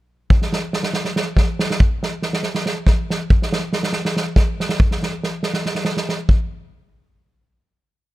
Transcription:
0.30 kick
0.42 snare
0.53 snare
0.73 snare
0.83 snare
0.93 snare
1.05 snare
1.16 snare
1.37 kick, snare
1.59 snare
1.70 snare
1.80 kick
2.03 snare
2.22 snare
2.33 snare
2.43 snare
2.55 snare
2.66 snare
2.86 kick, snare
3.10 snare
3.30 kick
3.42 snare
3.52 snare
3.72 snare
3.83 snare
3.93 snare
4.05 snare
4.16 snare
4.36 kick, snare
4.60 snare
4.69 snare
4.80 kick
4.91 snare
5.03 snare
5.23 snare
5.43 snare
5.54 snare
5.66 snare
5.75 snare
5.85 snare
5.97 snare
6.09 snare
6.29 kick

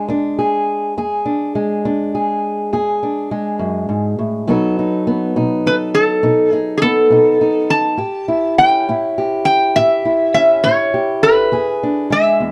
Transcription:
Already playing: G#3 G#4
0.08 E2 D4
0.39 G#4
0.98 E2 G#4
1.26 D4
1.55 G#3
1.85 E2 D4
2.15 G#4
2.73 E2 G#4
3.03 D4
3.31 G#3
3.59 F#2
3.89 G#2
4.19 A2
4.47 B2 F#3 B3 D#4 A4
4.79 D#4
5.07 B3
5.36 B2 D#4
5.66 A4 B4
5.95 A4
6.23 B2 D#4
6.52 D#4 G#4
6.77 G#4
6.82 B3 A4
7.10 B2 D#4
7.41 D#4
7.70 A5
7.97 A2 G4
8.28 E4
8.58 C#4 G5
8.89 A2 E4
9.18 G4
9.45 G5
9.76 A2 G4 E5
10.05 E4
10.34 C#4 E5
10.64 A2 E4 C#5
10.94 G4
11.23 B4
11.52 E2 G#4
11.83 D4
12.10 G#3 E5
12.40 E2

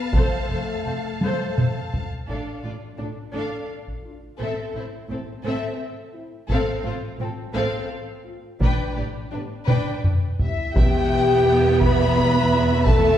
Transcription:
Already playing: B3 B4 F5 A5
0.13 F1 F2 A3 A4 C5, taiko
0.50 F1 F2 A4 C5
0.85 F1 F2 A4 C5
1.21 F1 F2 A4 C5, taiko high
1.58 F1 F2 A4 C5, taiko mid
1.94 taiko low
2.28 A1 A2 D4 A4 F5, taiko
2.63 A1 A2 D4 F4 D5
2.98 A1 A2 D4 F4 A4
3.33 A1 A2 D4 A4 F5
3.88 taiko
4.03 D4 F4
4.38 A1 A2 C4 A4 E5
4.73 A1 A2 C4 E4 C5
5.08 A1 A2 C4 E4 A4
5.43 A1 A2 C4 A4 E5
6.13 C4 E4
6.48 A1 A2 C4 A4 F5, taiko
6.84 A1 A2 C4 F4
6.88 C5
7.18 A1 A2 C4 F4 A4
7.54 A1 A2 C4 A4 F5
8.25 C4 F4
8.60 A1 A2 D4 B4 G5, taiko
8.96 A1 A2 D4 G4 D5
9.31 A1 A2 B3 D4 G4 B4
9.66 A1 A2 D4 B4 G5, taiko mid
10.04 taiko low-mid
10.39 B3 E4 G4 E5, taiko low
10.74 E1 E2 B3 G4 E5 G5, taiko
11.81 B4 B5, taiko
12.85 A3 A4 A5, taiko

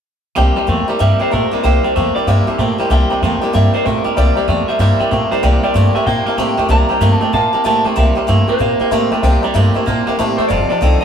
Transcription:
0.36 C2 C3 G3 A#3 E4 G4 C5 E5 G5
0.56 C3 G3 A#3 E4 G4 C5 E5 A5, muted upright bass stroke
0.67 E2 C3 G3 A3 A#3 E4 G4 C5 E5 G5
0.87 C3 G3 A#3 E4 G4 C5 E5 A#5, muted upright bass stroke
0.99 G2 C3 G3 A#3 E4 G4 C5 E5 G5
1.19 C3 G3 A#3 E4 G4 C5 E5 G5, muted upright bass stroke
1.30 A#2 C3 G3 A3 A#3 E4 G4 A#4 C5 E5 A#5
1.51 C3 G3 A#3 E4 G4 C5 E5 A#5, muted upright bass stroke
1.63 C2 C3 G3 A#3 E4 G4 C5 E5 G5
1.84 C3 G3 E4 G4 C5 E5 G5
1.95 E2 C3 G3 A3 A#3 E4 G4 C5 E5 G5
2.15 C3 G3 A#3 E4 G4 C5 D5 E5 G5, muted upright bass stroke
2.27 G2 C3 G3 A#3 E4 G4 C5 E5 G5
2.47 C3 G3 A#3 E4 G4 C5 E5 A5, muted upright bass stroke
2.58 A#2 C3 G3 A3 A#3 E4 G4 C5 E5 G5
2.78 C3 G3 A#3 E4 G4 C5 E5 G5, muted upright bass stroke
2.90 C2 C3 G3 A#3 E4 G4 C5 E5 G5 A5
3.09 C3 G3 A#3 E4 G4 C5 E5 A#5
3.21 E2 C3 G3 A3 A#3 E4 C5 E5 G5
3.25 G4
3.40 C3 G3 A#3 E4 G4 C5 E5 G5, muted upright bass stroke
3.52 G2 C3 G3 A#3 E4 G4 C5 E5 G5
3.73 C3 G3 A#3 E4 G4 C5 E5 G5
3.83 A#2 C3 G3 A3 A#3 A#4 C5 E5 G5
3.88 E4 G4
4.04 C3 G3 A#3 E4 G4 C5 E5 G5, muted upright bass stroke
4.15 C2 C3 G3 A#3 E4 G4 C5 D5 E5 G5
4.35 C3 G3 E4 G4 C5 E5 A#5, muted upright bass stroke
4.39 A#3
4.48 E2 C3 G3 A3 A#3 E4 G4 C5 E5 G5
4.68 C3 G3 A#3 E4 G4 C5 E5 G5, muted upright bass stroke
4.79 G2 C3 G3 A#3 E4 G4 C5 E5 A#5
4.99 C3 G3 A#3 E4 G4 C5 E5 G5, muted upright bass stroke
5.11 A#2 C3 G3 A3 A#3 E4 G4 C5 E5 G5
5.31 C3 G3 A#3 E4 G4 C5 E5 A#5, muted upright bass stroke
5.43 C2 C3 G3 A#3 E4 G4 C5 D5 E5 G5
5.63 C3 G3 A#3 E4 G4 C5 D5 E5 G5, muted upright bass stroke
5.74 G2 C3 G3 A3 A#3 E4 G4 C5 E5 G5
5.95 C3 A3 A#3 E4 G4 C5 E5 G5, muted upright bass stroke
6.06 A#2 C3 G3 A#3 E4 G4 C5 E5 G5
6.26 C3 A#3 E4 G4 C5 E5 A5, muted upright bass stroke
6.37 A2 C3 G3 A3 A#3 E4 G4 C5 E5 G5
6.57 F2 C3 A3 A#3 E4 G4 C5 E5 G5
6.69 C2 C3 G3 A#3 E4 G4 C5 E5 A5 A#5
6.89 C3 G3 A#3 E4 G4 C5 E5 G5
7.01 G2 C3 G3 A3 A#3 E4 G4 C5 E5 G5
7.13 A5
7.21 C3 A3 A#3 E4 G4 C5 E5 G5
7.33 A#2 C3 G3 A#3 E4 G4 C5 E5 G5 A5
7.53 C3 A#3 E4 G4 C5 E5 G5, muted upright bass stroke
7.64 A2 C3 G3 A3 A#3 E4 G4 C5 E5 G5 A5
7.84 F2 C3 A3 A#3 E4 G4 C5 E5 G5
7.96 C2 C3 G3 A#3 E4 G4 C5 E5 G5
8.15 C3 G3 A#3 E4 G4 C5 E5 G5, muted upright bass stroke
8.27 G2 C3 G3 A3 A#3 E4 G4 C5 E5 G5
8.48 C3 A3 A#3 E4 G4 C5 E5 A#5, muted upright bass stroke
8.59 A#2 C3 G3 A#3 E4 G4 C5 E5 G5
8.80 C3 A#3 E4 G4 C5 E5 G5, muted upright bass stroke
8.91 A2 C3 G3 A3 A#3 E4 G4 C5 E5 A5
9.11 F2 C3 A3 A#3 E4 G4 C5 E5 G5
9.22 C2 C3 G3 A#3 E4 G4 C5 E5 G5
9.42 C3 G3 A#3 E4 G4 C5 E5 A#5, muted upright bass stroke
9.54 G2 C3 G3 A3 A#3 E4 G4 C5 E5 A#5
9.74 C3 A3 A#3 E4 G4 C5 E5 A5, muted upright bass stroke
9.86 A#2 C3 G3 A#3 E4 G4 C5 E5 A5
10.06 C3 A#3 E4 G4 C5 E5 G5, muted upright bass stroke
10.18 A2 C3 G3 A3 A#3 E4 G4 C5 E5 A5
10.38 E2 C3 A3 A#3 E4 G4 C5 E5 A5
10.48 F1 F2 C3 F3 C4 D#4 A4 C5 D5 F5 A5
10.69 F2 C3 C4 D#4 A4 C5 D5 F5 A5, muted upright bass stroke
10.81 C2 F2 D3 F3 C4 D#4 A4 C5 F5 G5
11.01 A4 C5 D#5

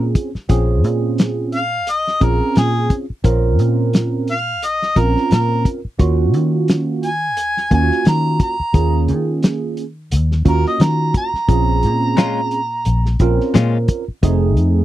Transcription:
Already playing: A#2 C4 C#4 F4 G#4 A#4
0.15 kick, closed hi-hat
0.35 muted fingered electric bass stroke, snare
0.49 A#1 C4 C#4 F4 G#4, kick, closed hi-hat
0.84 A#2, closed hi-hat
1.18 snare, closed hi-hat
1.52 F5, closed hi-hat
1.87 A#1 D#5, closed hi-hat
2.07 snare
2.20 A#1 C4 C#4 F4 G#4 A#4, kick, closed hi-hat
2.56 A#2 G#4, snare, closed hi-hat
2.90 kick, closed hi-hat
3.10 muted fingered electric bass stroke
3.24 A#1 C4 C#4 F4 A#4, kick, closed hi-hat
3.59 A#2, closed hi-hat
3.93 snare, closed hi-hat
4.28 F5, closed hi-hat
4.62 A#1 D#5, closed hi-hat
4.82 snare
4.96 A#1 C4 C#4 F4 A#4, kick, closed hi-hat
5.17 snare
5.31 A#2 A#4, snare, closed hi-hat
5.65 kick, closed hi-hat
5.85 muted fingered electric bass stroke
5.99 D#2 A#3 C#4 F4 F#4, kick, closed hi-hat
6.34 D#3, closed hi-hat
6.68 snare, closed hi-hat
7.03 G#5, closed hi-hat
7.37 D#2, closed hi-hat
7.57 snare
7.71 D#2 A#3 C#4 F4 F#4 G#5, kick, closed hi-hat
7.92 snare
8.05 D#3 A#5, snare, closed hi-hat
8.40 A#5, kick, closed hi-hat
8.60 muted fingered electric bass stroke
8.73 D#2 A#3 C#4 F4 G#4, kick, closed hi-hat
9.08 D#3, closed hi-hat
9.43 snare, closed hi-hat
9.77 closed hi-hat
10.11 D#2, closed hi-hat
10.31 snare
10.45 D#2 A#3 C#4 F4 F#4, kick, closed hi-hat
10.49 A#4
10.66 D#5, snare
10.80 D#3 A#5, snare, closed hi-hat
11.14 A#5, kick, closed hi-hat
11.34 muted fingered electric bass stroke, snare
11.48 A#1 C4 C#4 F4 G#4, kick, closed hi-hat
11.83 A#2, closed hi-hat
12.17 A#2 G#3 C#4 F4, snare, closed hi-hat
12.51 closed hi-hat
12.85 A#1, closed hi-hat
13.06 snare
13.19 A#1 C4 C#4 F4 A#4, kick, closed hi-hat
13.40 snare
13.54 A#2 G#3 C#4 F4, snare, closed hi-hat
13.88 kick, closed hi-hat
14.08 muted fingered electric bass stroke
14.23 F1 A3 C4 D#4 G#4, kick, closed hi-hat
14.57 F2, closed hi-hat

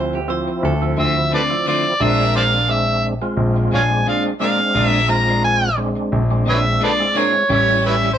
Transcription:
Already playing: D2 F3 C4 E4 C5
0.13 G4, muted clean electric guitar stroke
0.28 F3 C4 E4 C5, muted clean electric guitar stroke
0.48 muted clean electric guitar stroke
0.63 D2 A4
0.82 F3 C4 E4, muted clean electric guitar stroke
0.97 D2 D3 A3 C4 F4 E5
1.16 muted clean electric guitar stroke
1.31 D3 A3 C4 F4 A4 B4 D5
1.50 F3 C4 E4
1.65 D3 A3 C4 D4 F4 C5 D5
1.84 muted clean electric guitar stroke
2.00 A#1 A#2 G#3 C4 D4 F4 G#4 A#4 E5
2.34 C5 D5 F5, muted clean electric guitar stroke
2.52 G#3 D4 F4
2.68 G#3 C4 D4 E5, muted clean electric guitar stroke
2.87 muted clean electric guitar stroke
3.02 muted clean electric guitar stroke
3.21 G#3 C4 F4, muted clean electric guitar stroke
3.37 A#1
3.56 muted clean electric guitar stroke
3.71 A#1 A#2 G#3 D4 F4 C#5 F5 G#5
3.90 G#3 C4 D4, muted clean electric guitar stroke
4.06 A#2 G#3 D4 F4 F5
4.40 A#2 G#3 C4 D4 F4 G#4 A#4 F5
4.59 muted clean electric guitar stroke
4.74 A#1 A#2 G#3 D4 F4 G#4 A#4
4.87 E5
5.08 G#3 C4 F4 A#5, muted clean electric guitar stroke
5.27 G#3 D4 F4
5.43 G#5, muted clean electric guitar stroke
5.61 muted clean electric guitar stroke
5.77 G#3 C4 D4, muted clean electric guitar stroke
5.96 muted clean electric guitar stroke
6.12 A#1
6.31 G#3 C4 D4, muted clean electric guitar stroke
6.45 A#1 A#2 G#3 D4 F4
6.49 B4 C#5 E5
6.64 muted clean electric guitar stroke
6.80 A#2 G#3 D4 F4
6.84 A4 B4 D5
7.00 G#3 C4 E4
7.14 A#2 G#3 D4 F4 G#4 A#4 C#5
7.34 muted clean electric guitar stroke
7.48 A1 A2 G3 C#4 E4 G4 A4 C#5
7.83 B4 C#5 E5, muted clean electric guitar stroke
8.02 G3 C#4 E4
8.13 C5

